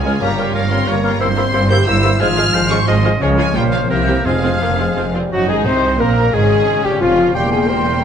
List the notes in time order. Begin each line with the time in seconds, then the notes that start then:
Already playing: C#2 C#3 F3 G#3 C#4 F4 G#4 C5 C#5 F5 G#5 C6 C#6
0.05 G#3 F4 G#4 C#5 F6
0.14 C#4
0.21 G1 G2 G3 A#3 F4 G4 A#4 C#5 A#5 F6
0.30 G3
0.38 G3 A#3 F4 A#4 C#5 G5 F6
0.46 F4
0.54 G1 G2 F3 A#3 A#4 C#5 F5 F6
0.63 A#4
0.70 G3 A#3 C4 F4 A#4 C#5 F5 C6 F6
0.79 C#6
0.87 G1 G2 A#3 C#5 A#5 F6
0.96 F4
1.03 G3 A#3 F4 A#4 C#5 F6
1.12 G3
1.19 G1 G2 G3 A#3 C4 E4 A#4 C5 C6 E6
1.29 G3
1.37 G3 A#3 E4 A#4 C5 E6
1.46 E4
1.52 G1 G2 G3 A#3 E4 A#4 C5 E6
1.63 A#4
1.69 G3 A#3 E4 G4 A#4 C5 E5 E6 G6
1.79 C6
1.85 G1 G2 G3 A#3 E4 A#4 C5 E6
1.96 E4
2.02 G3 A#3 E4 A#4 C5 E6
2.12 G3
2.19 G#1 G#2 F3 G#3 F4 G#4 C5 F6
2.29 F3
2.36 F3 G#3 F4 G#4 C5 F6
2.46 F4
2.54 G#1 G#2 F3 G#3 F4 G#4 C5 F6
2.62 G#4
2.69 F3 G#3 C#4 F4 G#4 C5 F5 C#6 F6
2.79 C6
2.87 G#1 G#2 F3 G#3 C4 F4 G#4 C5 D#5 C6 F6
2.96 F4
3.04 F3 G#3 F4 G#4 C5 F6
3.13 F3
3.21 C#2 C#3 F3 G#3 F4 G#4 C#5 F6
3.30 C#4
3.37 F3 G#3 F4 G#4 C#5 G#5
3.47 F4
3.55 A#1 A#2 F3 G3 A#3 F4 A#4 C5 C#5 G5 F6
3.64 F3
3.72 F3 A#3 F4 A#4 C#5 F5
3.90 C2 C3 E3 A#3 C4 G4 A#4 C5 E5 G6
4.00 G3
4.07 A#3 C4 G4 A#4 C5
4.25 F1 F2 F3 G#3 C4 F4 G#4 C5 F5 F6
4.35 G#3
4.43 C4 F4 G#4 C5
4.53 C5
4.61 F1 F2 A#3 C4 F4 G#4 C5
4.79 G#3 C4 F4 G#4 C5 C6
4.88 G#5
4.96 F1 F2 C4 F4 G#4 C5
5.06 C4
5.14 G3 G#3 C4 F4 G#4 C5
5.24 C4
5.31 F#1 F#2 G#2 F#3 D#4 F#4 F#5
5.48 G#1 G#2 G#3 G#4 G#5
5.66 C2 C3 C4 C5 C6
5.83 G#4
6.00 A#1 A#2 A#3 C4 A#4 A#5
6.17 F#4
6.33 G#1 G#2 C#3 G#3 C#4 G#4 G#5
6.50 G#3
6.68 C#5
6.84 G1 G2 G3 G4 G#4 G5
7.00 F1 F2 F3 F4 C#5 F5
7.34 E1 E2 E3 G3 A#3 G4 G5 C6
7.51 G3 G#4 G#5
7.68 G3 C5 G5 C6
7.85 G4